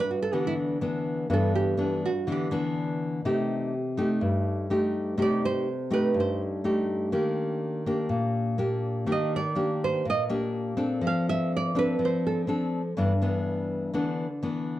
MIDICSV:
0, 0, Header, 1, 3, 480
1, 0, Start_track
1, 0, Tempo, 487013
1, 1266, Time_signature, 4, 2, 24, 8
1, 14584, End_track
2, 0, Start_track
2, 0, Title_t, "Nylon-string guitar"
2, 0, Program_c, 0, 24
2, 105, Note_on_c, 0, 66, 40
2, 203, Note_off_c, 0, 66, 0
2, 221, Note_on_c, 0, 69, 80
2, 334, Note_off_c, 0, 69, 0
2, 334, Note_on_c, 0, 67, 61
2, 437, Note_off_c, 0, 67, 0
2, 463, Note_on_c, 0, 64, 71
2, 524, Note_off_c, 0, 64, 0
2, 1315, Note_on_c, 0, 69, 54
2, 1524, Note_off_c, 0, 69, 0
2, 1532, Note_on_c, 0, 67, 70
2, 1966, Note_off_c, 0, 67, 0
2, 2026, Note_on_c, 0, 66, 69
2, 2239, Note_off_c, 0, 66, 0
2, 2286, Note_on_c, 0, 67, 63
2, 2489, Note_off_c, 0, 67, 0
2, 5146, Note_on_c, 0, 74, 75
2, 5358, Note_off_c, 0, 74, 0
2, 5375, Note_on_c, 0, 72, 77
2, 5807, Note_off_c, 0, 72, 0
2, 5849, Note_on_c, 0, 71, 77
2, 6070, Note_off_c, 0, 71, 0
2, 6111, Note_on_c, 0, 72, 63
2, 6321, Note_off_c, 0, 72, 0
2, 8989, Note_on_c, 0, 75, 68
2, 9200, Note_off_c, 0, 75, 0
2, 9226, Note_on_c, 0, 74, 78
2, 9653, Note_off_c, 0, 74, 0
2, 9700, Note_on_c, 0, 72, 76
2, 9916, Note_off_c, 0, 72, 0
2, 9952, Note_on_c, 0, 75, 79
2, 10082, Note_off_c, 0, 75, 0
2, 10909, Note_on_c, 0, 77, 71
2, 11120, Note_off_c, 0, 77, 0
2, 11131, Note_on_c, 0, 76, 83
2, 11351, Note_off_c, 0, 76, 0
2, 11399, Note_on_c, 0, 74, 76
2, 11605, Note_off_c, 0, 74, 0
2, 11617, Note_on_c, 0, 71, 76
2, 11834, Note_off_c, 0, 71, 0
2, 11876, Note_on_c, 0, 72, 75
2, 12084, Note_off_c, 0, 72, 0
2, 12089, Note_on_c, 0, 69, 73
2, 12226, Note_off_c, 0, 69, 0
2, 14584, End_track
3, 0, Start_track
3, 0, Title_t, "Nylon-string guitar"
3, 0, Program_c, 1, 24
3, 0, Note_on_c, 1, 43, 65
3, 286, Note_off_c, 1, 43, 0
3, 321, Note_on_c, 1, 50, 61
3, 325, Note_on_c, 1, 52, 49
3, 327, Note_on_c, 1, 59, 53
3, 329, Note_on_c, 1, 62, 56
3, 755, Note_off_c, 1, 52, 0
3, 758, Note_off_c, 1, 59, 0
3, 758, Note_off_c, 1, 62, 0
3, 801, Note_on_c, 1, 52, 49
3, 807, Note_on_c, 1, 62, 57
3, 808, Note_on_c, 1, 59, 50
3, 1235, Note_off_c, 1, 52, 0
3, 1236, Note_off_c, 1, 62, 0
3, 1238, Note_off_c, 1, 59, 0
3, 1250, Note_off_c, 1, 50, 0
3, 1279, Note_on_c, 1, 43, 67
3, 1279, Note_on_c, 1, 52, 51
3, 1281, Note_on_c, 1, 59, 55
3, 1287, Note_on_c, 1, 62, 53
3, 1713, Note_off_c, 1, 52, 0
3, 1715, Note_off_c, 1, 59, 0
3, 1716, Note_off_c, 1, 62, 0
3, 1748, Note_on_c, 1, 52, 52
3, 1756, Note_on_c, 1, 59, 46
3, 1760, Note_on_c, 1, 62, 55
3, 2056, Note_off_c, 1, 52, 0
3, 2060, Note_off_c, 1, 59, 0
3, 2061, Note_off_c, 1, 62, 0
3, 2208, Note_off_c, 1, 43, 0
3, 2236, Note_on_c, 1, 50, 62
3, 2244, Note_on_c, 1, 52, 54
3, 2246, Note_on_c, 1, 59, 48
3, 2249, Note_on_c, 1, 62, 54
3, 2434, Note_off_c, 1, 59, 0
3, 2435, Note_off_c, 1, 52, 0
3, 2438, Note_off_c, 1, 62, 0
3, 2475, Note_on_c, 1, 52, 61
3, 2480, Note_on_c, 1, 59, 55
3, 2484, Note_on_c, 1, 62, 70
3, 3151, Note_off_c, 1, 52, 0
3, 3154, Note_off_c, 1, 59, 0
3, 3155, Note_off_c, 1, 62, 0
3, 3168, Note_off_c, 1, 50, 0
3, 3204, Note_on_c, 1, 48, 67
3, 3206, Note_on_c, 1, 57, 51
3, 3209, Note_on_c, 1, 63, 49
3, 3213, Note_on_c, 1, 67, 55
3, 3672, Note_off_c, 1, 57, 0
3, 3672, Note_off_c, 1, 63, 0
3, 3675, Note_off_c, 1, 67, 0
3, 3916, Note_on_c, 1, 57, 61
3, 3924, Note_on_c, 1, 63, 54
3, 3928, Note_on_c, 1, 67, 64
3, 4131, Note_off_c, 1, 48, 0
3, 4151, Note_on_c, 1, 43, 62
3, 4592, Note_off_c, 1, 57, 0
3, 4596, Note_off_c, 1, 63, 0
3, 4596, Note_off_c, 1, 67, 0
3, 4634, Note_on_c, 1, 57, 49
3, 4641, Note_on_c, 1, 63, 49
3, 4641, Note_on_c, 1, 67, 57
3, 5071, Note_off_c, 1, 57, 0
3, 5073, Note_off_c, 1, 63, 0
3, 5074, Note_off_c, 1, 67, 0
3, 5083, Note_off_c, 1, 43, 0
3, 5100, Note_on_c, 1, 48, 63
3, 5103, Note_on_c, 1, 57, 48
3, 5104, Note_on_c, 1, 63, 49
3, 5113, Note_on_c, 1, 67, 61
3, 5580, Note_off_c, 1, 57, 0
3, 5580, Note_off_c, 1, 63, 0
3, 5585, Note_off_c, 1, 67, 0
3, 5820, Note_on_c, 1, 57, 57
3, 5825, Note_on_c, 1, 63, 54
3, 5831, Note_on_c, 1, 67, 64
3, 6039, Note_off_c, 1, 48, 0
3, 6054, Note_on_c, 1, 43, 60
3, 6503, Note_off_c, 1, 57, 0
3, 6506, Note_off_c, 1, 63, 0
3, 6509, Note_off_c, 1, 67, 0
3, 6547, Note_on_c, 1, 57, 48
3, 6552, Note_on_c, 1, 63, 51
3, 6556, Note_on_c, 1, 67, 54
3, 6987, Note_off_c, 1, 57, 0
3, 6989, Note_off_c, 1, 63, 0
3, 6991, Note_off_c, 1, 67, 0
3, 6995, Note_off_c, 1, 43, 0
3, 7019, Note_on_c, 1, 51, 62
3, 7023, Note_on_c, 1, 58, 53
3, 7025, Note_on_c, 1, 62, 52
3, 7029, Note_on_c, 1, 67, 62
3, 7705, Note_off_c, 1, 58, 0
3, 7705, Note_off_c, 1, 62, 0
3, 7708, Note_off_c, 1, 67, 0
3, 7750, Note_on_c, 1, 58, 55
3, 7757, Note_on_c, 1, 62, 57
3, 7759, Note_on_c, 1, 67, 59
3, 7957, Note_off_c, 1, 51, 0
3, 7976, Note_on_c, 1, 46, 59
3, 8429, Note_off_c, 1, 58, 0
3, 8431, Note_off_c, 1, 62, 0
3, 8433, Note_off_c, 1, 67, 0
3, 8457, Note_on_c, 1, 58, 49
3, 8461, Note_on_c, 1, 62, 52
3, 8467, Note_on_c, 1, 67, 52
3, 8902, Note_off_c, 1, 58, 0
3, 8903, Note_off_c, 1, 62, 0
3, 8907, Note_off_c, 1, 67, 0
3, 8916, Note_off_c, 1, 46, 0
3, 8934, Note_on_c, 1, 51, 65
3, 8939, Note_on_c, 1, 58, 52
3, 8942, Note_on_c, 1, 67, 57
3, 8945, Note_on_c, 1, 62, 54
3, 9250, Note_off_c, 1, 58, 0
3, 9251, Note_off_c, 1, 62, 0
3, 9252, Note_off_c, 1, 67, 0
3, 9415, Note_on_c, 1, 58, 50
3, 9421, Note_on_c, 1, 62, 50
3, 9426, Note_on_c, 1, 67, 61
3, 9876, Note_off_c, 1, 51, 0
3, 9897, Note_off_c, 1, 58, 0
3, 9900, Note_off_c, 1, 62, 0
3, 9901, Note_off_c, 1, 67, 0
3, 9908, Note_on_c, 1, 46, 63
3, 10146, Note_on_c, 1, 58, 60
3, 10150, Note_on_c, 1, 62, 54
3, 10153, Note_on_c, 1, 67, 61
3, 10587, Note_off_c, 1, 58, 0
3, 10589, Note_off_c, 1, 62, 0
3, 10590, Note_off_c, 1, 67, 0
3, 10613, Note_on_c, 1, 60, 53
3, 10618, Note_on_c, 1, 62, 52
3, 10626, Note_on_c, 1, 69, 54
3, 10842, Note_off_c, 1, 46, 0
3, 10855, Note_on_c, 1, 53, 69
3, 11542, Note_off_c, 1, 60, 0
3, 11542, Note_off_c, 1, 62, 0
3, 11547, Note_off_c, 1, 69, 0
3, 11581, Note_on_c, 1, 60, 56
3, 11587, Note_on_c, 1, 62, 60
3, 11595, Note_on_c, 1, 69, 59
3, 11796, Note_off_c, 1, 53, 0
3, 11817, Note_on_c, 1, 53, 59
3, 12265, Note_off_c, 1, 60, 0
3, 12268, Note_off_c, 1, 62, 0
3, 12272, Note_off_c, 1, 69, 0
3, 12292, Note_on_c, 1, 60, 51
3, 12302, Note_on_c, 1, 62, 52
3, 12309, Note_on_c, 1, 69, 55
3, 12621, Note_off_c, 1, 60, 0
3, 12626, Note_off_c, 1, 62, 0
3, 12630, Note_off_c, 1, 69, 0
3, 12757, Note_off_c, 1, 53, 0
3, 12781, Note_on_c, 1, 52, 53
3, 12785, Note_on_c, 1, 43, 69
3, 12791, Note_on_c, 1, 59, 51
3, 12796, Note_on_c, 1, 62, 62
3, 12924, Note_off_c, 1, 52, 0
3, 12928, Note_off_c, 1, 59, 0
3, 12932, Note_off_c, 1, 62, 0
3, 13025, Note_on_c, 1, 52, 47
3, 13032, Note_on_c, 1, 59, 49
3, 13033, Note_on_c, 1, 62, 62
3, 13708, Note_off_c, 1, 52, 0
3, 13709, Note_off_c, 1, 59, 0
3, 13711, Note_off_c, 1, 62, 0
3, 13722, Note_off_c, 1, 43, 0
3, 13735, Note_on_c, 1, 52, 51
3, 13741, Note_on_c, 1, 50, 59
3, 13741, Note_on_c, 1, 59, 50
3, 13746, Note_on_c, 1, 62, 62
3, 14050, Note_off_c, 1, 52, 0
3, 14052, Note_off_c, 1, 59, 0
3, 14055, Note_off_c, 1, 62, 0
3, 14218, Note_on_c, 1, 52, 53
3, 14225, Note_on_c, 1, 59, 51
3, 14226, Note_on_c, 1, 62, 56
3, 14584, Note_off_c, 1, 50, 0
3, 14584, Note_off_c, 1, 52, 0
3, 14584, Note_off_c, 1, 59, 0
3, 14584, Note_off_c, 1, 62, 0
3, 14584, End_track
0, 0, End_of_file